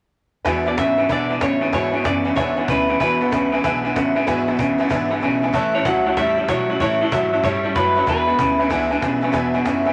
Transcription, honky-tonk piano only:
0.45 0.58 B4 loud
0.45 0.58 E5 loud
0.45 0.58 G#5 loud
0.65 0.72 B4 medium
0.65 0.73 E5 medium
0.65 0.73 G#5 medium
0.77 0.90 B4 medium
0.77 0.90 E5 medium
0.77 0.90 G#5 medium
0.98 1.05 B4 medium
0.98 1.05 E5 medium
0.98 1.05 G#5 medium
1.09 1.22 B4 medium
1.09 1.22 E5 medium
1.09 1.22 G#5 medium
1.30 1.37 B4 medium
1.30 1.37 E5 medium
1.30 1.37 G#5 medium
1.41 1.53 B4 medium
1.41 1.54 E5 medium
1.41 1.54 G#5 medium
1.61 1.68 B4 medium
1.61 1.69 E5 medium
1.61 1.69 G#5 medium
1.72 1.85 B4 loud
1.72 1.85 E5 medium
1.72 1.86 G#5 loud
1.92 2.00 B4 medium
1.92 2.00 E5 medium
1.92 2.00 G#5 medium
2.04 2.17 B4 medium
2.04 2.17 E5 medium
2.04 2.17 G#5 medium
2.24 2.32 B4 medium
2.24 2.32 E5 medium
2.24 2.32 G#5 medium
2.36 2.49 B4 loud
2.36 2.49 E5 medium
2.36 2.49 G#5 loud
2.56 2.63 B4 medium
2.56 2.64 E5 medium
2.56 2.64 G#5 medium
2.68 2.81 B4 medium
2.68 2.81 E5 medium
2.68 2.81 G#5 medium
2.89 2.96 B4 medium
2.89 2.96 E5 medium
2.89 2.96 G#5 medium
3.00 3.12 B4 loud
3.00 3.13 E5 medium
3.00 3.13 G#5 loud
3.21 3.28 B4 medium
3.21 3.28 E5 medium
3.21 3.28 F#5 medium
3.32 3.44 B4 medium
3.32 3.44 E5 medium
3.32 3.45 G#5 medium
3.52 3.59 B4 medium
3.52 3.60 E5 medium
3.52 3.60 G#5 loud
3.64 3.76 B4 loud
3.64 3.76 E5 loud
3.64 3.77 G#5 loud
3.84 3.91 B4 medium
3.84 3.91 E5 medium
3.84 3.91 G#5 loud
3.96 4.08 B4 medium
3.96 4.08 E5 medium
3.96 4.08 F#5 medium
4.16 4.22 B4 medium
4.16 4.23 E5 medium
4.16 4.23 G#5 loud
4.27 4.39 B4 loud
4.27 4.39 E5 loud
4.27 4.40 G#5 loud
4.48 4.54 B4 medium
4.48 4.55 E5 medium
4.48 4.55 G#5 medium
4.59 4.71 B4 medium
4.59 4.72 E5 medium
4.59 4.72 G#5 medium
4.79 4.86 B4 medium
4.79 4.86 E5 medium
4.79 4.87 G#5 loud
4.91 5.03 B4 loud
4.91 5.03 E5 loud
4.91 5.04 G#5 loud
5.10 5.17 B4 medium
5.10 5.18 E5 medium
5.10 5.18 G#5 medium
5.22 5.34 B4 medium
5.22 5.35 E5 medium
5.22 5.35 G#5 loud
5.43 5.50 B4 medium
5.43 5.50 E5 medium
5.43 5.50 G#5 medium
5.54 5.66 C#5 loud
5.54 5.66 E5 loud
5.54 5.67 A5 loud
5.74 5.81 C#5 medium
5.74 5.81 E5 medium
5.74 5.82 A5 medium
5.85 5.98 C#5 medium
5.85 5.98 E5 medium
5.85 5.98 A5 medium
6.06 6.13 C#5 medium
6.06 6.13 E5 medium
6.06 6.14 A5 medium
6.17 6.29 C#5 medium
6.17 6.30 E5 medium
6.17 6.30 A5 loud
6.38 6.45 C#5 medium
6.38 6.45 E5 medium
6.38 6.45 A5 medium
6.49 6.61 C#5 medium
6.49 6.62 E5 medium
6.49 6.62 A5 medium
6.69 6.76 C#5 medium
6.69 6.76 E5 medium
6.69 6.77 A5 medium
6.81 6.93 C#5 loud
6.81 6.93 E5 medium
6.81 6.94 A5 loud
7.01 7.08 C#5 medium
7.01 7.08 E5 medium
7.01 7.08 A5 medium
7.13 7.25 C#5 medium
7.13 7.25 E5 medium
7.13 7.25 A5 medium
7.32 7.39 C#5 medium
7.32 7.40 E5 medium
7.32 7.40 A5 medium
7.44 7.56 C#5 loud
7.44 7.57 E5 medium
7.44 7.57 A5 loud
7.64 7.71 C#5 medium
7.64 7.71 E5 medium
7.64 7.72 A5 medium
7.76 7.88 C#5 medium
7.76 7.88 E5 medium
7.76 7.89 A5 medium
7.96 8.03 C#5 medium
7.96 8.03 E5 medium
7.96 8.03 A5 medium
8.07 8.19 B4 loud
8.07 8.20 E5 medium
8.07 8.20 G#5 loud
8.27 8.34 B4 medium
8.27 8.34 E5 medium
8.27 8.34 G#5 medium
8.37 8.50 B4 medium
8.37 8.51 E5 medium
8.37 8.51 G#5 medium
8.58 8.66 B4 loud
8.58 8.66 E5 medium
8.58 8.66 G#5 loud
8.69 8.82 B4 loud
8.69 8.83 E5 loud
8.69 8.83 G#5 loud
8.90 8.97 B4 medium
8.90 8.98 E5 medium
8.90 8.98 G#5 medium
9.01 9.14 B4 medium
9.01 9.14 E5 medium
9.01 9.15 G#5 medium
9.22 9.29 B4 medium
9.22 9.29 E5 medium
9.22 9.30 G#5 loud
9.33 9.46 B4 loud
9.33 9.46 E5 loud
9.33 9.46 G#5 loud
9.54 9.61 B4 medium
9.54 9.61 E5 medium
9.54 9.61 G#5 loud
9.65 9.77 B4 medium
9.65 9.78 E5 medium
9.65 9.78 G#5 loud
9.86 9.93 B4 medium
9.86 9.93 E5 medium
9.86 9.93 G#5 loud

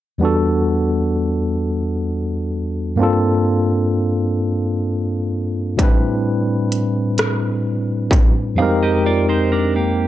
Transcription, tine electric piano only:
0.18 2.95 E2 medium
0.18 2.95 G3 soft
0.18 2.96 B3 medium
0.22 2.97 D4 soft
0.22 2.97 F#4 medium
0.22 2.98 A4 medium
2.96 5.73 G2 medium
2.96 5.74 A#3 medium
2.96 5.75 C4 medium
2.96 5.75 D4 medium
3.02 5.76 F4 medium
3.02 5.77 A4 medium
5.77 8.53 A2 medium
5.77 8.54 G3 medium
5.77 8.54 C4 medium
5.77 8.55 D4 medium
5.83 8.56 E4 medium
5.83 8.56 B4 medium
8.55 10.08 F2 medium
8.55 8.64 G3 soft
8.55 10.08 C4 medium
8.60 10.08 G#3 medium
8.60 10.08 D#4 medium
8.60 10.08 G4 medium
8.60 10.08 A#4 medium

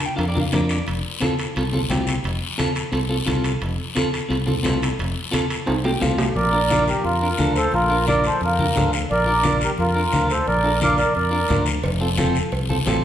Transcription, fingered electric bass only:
0.18 0.46 F2 medium
0.53 0.80 F2 medium
0.88 1.01 F1 medium
1.57 1.84 C2 medium
1.90 2.18 C2 loud
2.25 2.38 F1 medium
2.92 3.20 C2 medium
3.28 3.55 C2 medium
3.62 3.76 F1 loud
4.30 4.58 C2 medium
4.64 4.92 C2 loud
4.99 5.13 F1 medium
5.68 5.95 C2 medium
6.02 6.29 C2 loud
6.36 6.91 A#1 loud
7.04 7.32 F2 medium
7.39 7.66 D2 loud
7.72 8.28 A#1 loud
8.41 8.69 F2 medium
8.76 9.03 D2 loud
9.11 9.65 A#1 loud
9.79 10.06 F2 medium
10.13 10.41 D2 loud
10.48 11.02 A#1 loud
11.16 11.43 F2 medium
11.50 11.77 D2 loud
11.83 12.39 F1 loud
12.52 12.80 C2 medium
12.87 13.04 A1 loud

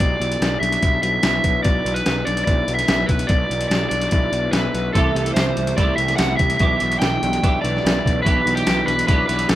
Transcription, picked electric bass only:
0.00 0.15 B1 medium
0.20 0.35 B1 medium
0.41 0.56 B1 medium
0.61 0.76 B1 medium
0.83 0.97 B1 medium
1.02 1.17 B1 medium
1.23 1.38 B1 medium
1.44 1.59 B1 medium
1.65 1.80 B1 medium
1.85 2.00 B1 medium
2.07 2.21 B1 medium
2.28 2.42 B1 medium
2.47 2.62 B1 medium
2.68 2.83 B1 medium
2.89 3.03 B1 medium
3.09 3.24 B1 medium
3.29 3.44 B1 medium
3.50 3.65 B1 medium
3.70 3.85 B1 medium
3.91 4.06 B1 medium
4.12 4.27 B1 medium
4.32 4.47 B1 medium
4.52 4.68 B1 medium
4.74 4.89 B1 medium
4.95 5.10 C2 medium
5.15 5.30 C2 medium
5.36 5.51 C2 medium
5.57 5.72 C2 medium
5.78 5.93 C2 medium
5.98 6.13 C2 medium
6.19 6.34 C2 medium
6.40 6.55 C2 medium
6.61 6.75 B1 medium
6.82 6.96 B1 medium
7.02 7.17 B1 medium
7.23 7.37 B1 medium
7.43 7.58 B1 medium
7.64 7.79 B1 medium
7.85 7.99 B1 medium
8.05 8.20 B1 medium
8.26 8.41 B1 medium
8.46 8.61 B1 medium
8.67 8.82 B1 medium
8.87 9.02 B1 medium
9.09 9.23 B1 medium
9.29 9.44 B1 medium
9.50 9.55 B1 medium

